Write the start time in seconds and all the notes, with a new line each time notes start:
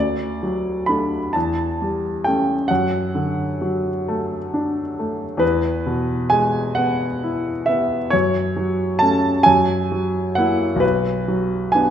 Already playing: D2 D5
0.43 F#3
0.86 A3 D4 B5
1.33 E2 A5
1.82 G3
2.24 A3 C#4 G5
2.68 F#2 F#5
3.15 D3
3.62 F#3
4.08 A3
4.54 D4
4.99 A3
5.37 E2 B4
5.86 B2
6.30 G#3 G#5
6.75 B3 F#5
7.23 E4
7.66 B3 E5
8.10 F#2 C#5
8.56 F#3
8.99 A3 C#4 A5
9.43 F#2 G#5
9.92 F#3
10.35 A#3 E4 F#5
10.76 B1
10.80 B4
11.28 F#3
11.72 B3 D4 G#5